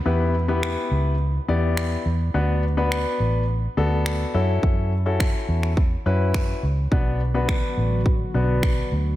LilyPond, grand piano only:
\new Staff \with { instrumentName = "Grand piano" } { \time 4/4 \key b \minor \tempo 4 = 105 <b e' g' b'>8 r16 <b e' g' b'>4~ <b e' g' b'>16 r8 <b e' g' d''>4 r8 | <b d' fis' b'>8 r16 <b d' fis' b'>4~ <b d' fis' b'>16 r8 <b d' fis' a'>4 <cis' e' fis' a'>8~ | <cis' e' fis' a'>8 r16 <cis' e' fis' a'>4~ <cis' e' fis' a'>16 r8 <cis' e' fis' b'>4 r8 | <b d' fis' b'>8 r16 <b d' fis' b'>4~ <b d' fis' b'>16 r8 <b d' fis' b'>4 r8 | }